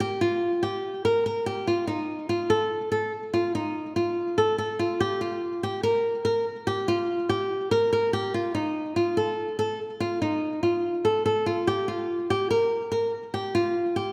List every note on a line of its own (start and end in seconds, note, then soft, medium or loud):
0.00 0.20 G4 medium
0.21 0.60 F4 medium
0.63 1.02 G4 medium
1.05 1.24 A#4 medium
1.26 1.45 A#4 medium
1.46 1.66 G4 medium
1.67 1.87 F4 medium
1.87 2.27 D#4 medium
2.29 2.49 F4 medium
2.50 2.89 A4 medium
2.92 3.11 A4 medium
3.34 3.53 F4 medium
3.55 3.94 D#4 medium
3.96 4.35 F4 medium
4.38 4.57 A4 medium
4.58 4.78 A4 medium
4.79 4.99 F4 medium
5.00 5.20 G4 medium
5.21 5.60 F4 medium
5.63 5.82 G4 medium
5.83 6.23 A#4 medium
6.25 6.44 A#4 medium
6.67 6.86 G4 medium
6.88 7.27 F4 medium
7.29 7.69 G4 medium
7.71 7.91 A#4 medium
7.93 8.12 A#4 medium
8.13 8.32 G4 medium
8.34 8.53 F4 medium
8.55 8.94 D#4 medium
8.96 9.15 F4 medium
9.17 9.56 A4 medium
9.59 9.78 A4 medium
10.00 10.20 F4 medium
10.22 10.61 D#4 medium
10.63 11.02 F4 medium
11.05 11.24 A4 medium
11.26 11.45 A4 medium
11.46 11.66 F4 medium
11.67 11.87 G4 medium
11.88 12.27 F4 medium
12.30 12.49 G4 medium
12.51 12.90 A#4 medium
12.92 13.11 A#4 medium
13.34 13.53 G4 medium
13.55 13.94 F4 medium
13.96 14.12 G4 medium